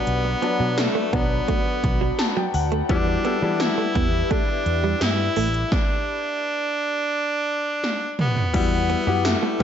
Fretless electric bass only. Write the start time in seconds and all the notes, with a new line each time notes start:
0.07 B1
0.60 B2
1.13 B1
1.84 B1
2.54 D2
2.90 E2
3.42 E3
3.95 E2
4.66 E2
5.01 G2
5.37 A1
8.54 E2
9.07 F#2